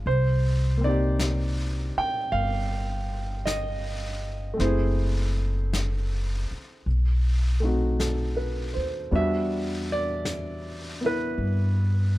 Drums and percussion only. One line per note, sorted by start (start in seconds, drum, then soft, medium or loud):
0.05 brush sweep soft
1.19 brush sweep soft
1.19 snare soft
1.19 hi-hat pedal soft
2.33 brush sweep soft
3.47 brush sweep soft
3.47 snare soft
3.47 hi-hat pedal soft
4.60 brush sweep soft
4.60 snare soft
5.73 brush sweep soft
5.73 snare soft
5.73 hi-hat pedal soft
6.87 brush sweep soft
8.00 brush sweep soft
8.00 snare soft
8.00 hi-hat pedal soft
9.12 brush sweep soft
10.25 brush sweep soft
10.25 snare soft
10.25 hi-hat pedal soft
11.39 brush sweep soft